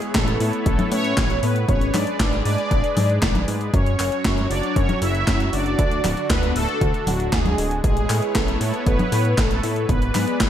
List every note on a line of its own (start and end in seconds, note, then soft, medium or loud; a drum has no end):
0.00 0.12 G#3 medium
0.00 1.67 B3 medium
0.00 1.67 E4 medium
0.00 0.16 G#4 loud
0.00 3.70 B4 medium
0.00 1.67 C#5 medium
0.00 closed hi-hat soft
0.15 0.37 A1 loud
0.15 0.63 A3 medium
0.15 0.65 A4 loud
0.15 kick loud
0.15 snare loud
0.15 clap loud
0.15 closed hi-hat medium
0.28 closed hi-hat soft
0.40 0.52 A2 loud
0.40 open hi-hat medium
0.53 closed hi-hat soft
0.66 0.77 A1 loud
0.66 0.90 A3 medium
0.66 0.92 A4 loud
0.66 kick loud
0.66 closed hi-hat medium
0.79 closed hi-hat soft
0.79 high conga medium
0.92 1.14 A2 loud
0.92 1.40 C#4 medium
0.92 1.45 C#5 loud
0.92 open hi-hat loud
1.04 closed hi-hat soft
1.17 1.40 A1 loud
1.17 kick loud
1.17 snare loud
1.17 clap loud
1.17 closed hi-hat medium
1.30 closed hi-hat soft
1.43 1.66 A2 loud
1.43 1.67 B3 medium
1.43 1.67 B4 medium
1.43 open hi-hat medium
1.56 closed hi-hat soft
1.69 1.91 G#1 loud
1.69 3.72 G#3 medium
1.69 1.93 C#4 medium
1.69 3.72 G#4 medium
1.69 1.95 C#5 loud
1.69 3.72 D5 medium
1.69 kick loud
1.69 closed hi-hat medium
1.81 closed hi-hat soft
1.94 2.06 G#2 loud
1.94 2.42 D4 medium
1.94 2.45 D5 loud
1.94 clap medium
1.94 open hi-hat loud
1.94 high conga medium
2.07 closed hi-hat soft
2.20 2.42 G#1 loud
2.20 kick loud
2.20 snare loud
2.20 clap loud
2.20 closed hi-hat medium
2.33 closed hi-hat soft
2.45 2.57 G#2 loud
2.45 3.45 D4 medium
2.45 3.44 D5 loud
2.45 open hi-hat loud
2.58 closed hi-hat soft
2.71 2.82 G#1 loud
2.71 kick loud
2.71 closed hi-hat medium
2.84 closed hi-hat soft
2.97 3.19 G#2 medium
2.97 open hi-hat loud
2.97 high conga medium
3.10 closed hi-hat soft
3.22 3.45 G#1 loud
3.22 kick loud
3.22 snare loud
3.22 clap medium
3.22 closed hi-hat medium
3.35 closed hi-hat soft
3.35 high conga medium
3.48 3.71 G#2 medium
3.48 open hi-hat medium
3.61 closed hi-hat soft
3.74 3.96 F#2 medium
3.74 5.77 F#3 medium
3.74 4.47 C#4 medium
3.74 7.80 F#4 medium
3.74 5.77 C#5 medium
3.74 4.47 C#5 loud
3.74 kick loud
3.74 closed hi-hat medium
3.86 closed hi-hat soft
3.99 4.11 F#1 loud
3.99 clap medium
3.99 open hi-hat loud
4.12 closed hi-hat soft
4.25 4.48 F#2 loud
4.25 kick loud
4.25 snare loud
4.25 clap medium
4.25 closed hi-hat medium
4.38 closed hi-hat soft
4.51 4.62 F#1 loud
4.51 4.75 D4 medium
4.51 4.75 D5 loud
4.51 open hi-hat medium
4.63 closed hi-hat soft
4.76 4.88 F#2 loud
4.76 5.01 C#4 medium
4.76 5.00 C#5 loud
4.76 kick loud
4.76 closed hi-hat medium
4.89 closed hi-hat soft
4.89 high conga medium
5.02 5.24 F#1 loud
5.02 5.50 E4 loud
5.02 5.55 E5 loud
5.02 open hi-hat loud
5.15 closed hi-hat soft
5.27 5.50 F#2 loud
5.27 kick loud
5.27 snare loud
5.27 clap medium
5.27 closed hi-hat medium
5.40 closed hi-hat soft
5.53 5.76 F#1 loud
5.53 6.27 D4 medium
5.53 6.26 D5 loud
5.53 open hi-hat loud
5.66 closed hi-hat soft
5.79 6.01 D2 loud
5.79 7.82 D3 medium
5.79 7.82 D4 medium
5.79 kick loud
5.79 closed hi-hat medium
5.92 closed hi-hat soft
6.04 6.16 D1 loud
6.04 clap medium
6.04 open hi-hat loud
6.04 high conga medium
6.17 closed hi-hat soft
6.30 6.53 D2 loud
6.30 6.54 B3 medium
6.30 6.56 B4 loud
6.30 kick loud
6.30 snare loud
6.30 clap medium
6.30 closed hi-hat medium
6.43 closed hi-hat soft
6.56 6.67 D1 loud
6.56 7.04 A3 medium
6.56 7.09 A4 loud
6.56 open hi-hat loud
6.69 closed hi-hat soft
6.81 6.93 D2 loud
6.81 kick loud
6.81 closed hi-hat medium
6.94 closed hi-hat soft
7.07 7.30 D1 loud
7.07 7.31 F#3 medium
7.07 7.34 F#4 loud
7.07 open hi-hat loud
7.07 high conga medium
7.20 closed hi-hat soft
7.33 7.55 D2 loud
7.33 7.81 G#3 medium
7.33 7.80 G#4 loud
7.33 kick loud
7.33 snare loud
7.33 clap medium
7.33 closed hi-hat medium
7.46 closed hi-hat soft
7.46 high conga medium
7.58 7.81 D1 loud
7.58 open hi-hat loud
7.71 closed hi-hat soft
7.84 8.07 A1 loud
7.84 8.32 G#3 medium
7.84 9.87 B3 medium
7.84 9.87 E4 medium
7.84 8.37 G#4 loud
7.84 10.50 B4 medium
7.84 9.87 C#5 medium
7.84 kick loud
7.84 closed hi-hat medium
7.97 closed hi-hat soft
8.10 8.21 A2 loud
8.10 clap medium
8.10 open hi-hat loud
8.22 closed hi-hat soft
8.35 8.58 A1 loud
8.35 8.83 A3 medium
8.35 8.88 A4 loud
8.35 kick loud
8.35 snare loud
8.35 clap medium
8.35 closed hi-hat medium
8.48 closed hi-hat soft
8.61 8.72 A2 loud
8.61 open hi-hat loud
8.74 closed hi-hat soft
8.87 8.98 A1 loud
8.87 9.35 B3 medium
8.87 9.39 B4 loud
8.87 kick loud
8.87 closed hi-hat medium
8.99 closed hi-hat soft
8.99 high conga medium
9.12 9.35 A2 loud
9.12 open hi-hat loud
9.25 closed hi-hat soft
9.38 9.60 A1 loud
9.38 9.86 A3 medium
9.38 9.86 A4 loud
9.38 kick loud
9.38 snare loud
9.38 clap medium
9.38 closed hi-hat medium
9.51 closed hi-hat soft
9.63 9.86 A2 loud
9.63 open hi-hat loud
9.76 closed hi-hat soft
9.89 10.12 G#1 loud
9.89 10.50 G#3 medium
9.89 10.50 B3 medium
9.89 10.50 G#4 medium
9.89 10.50 B4 loud
9.89 10.50 D5 medium
9.89 kick loud
9.89 closed hi-hat medium
10.02 closed hi-hat soft
10.15 10.26 G#2 loud
10.15 clap medium
10.15 open hi-hat loud
10.15 high conga medium
10.28 closed hi-hat soft
10.40 10.50 G#1 loud
10.40 kick loud
10.40 snare loud
10.40 clap loud
10.40 closed hi-hat medium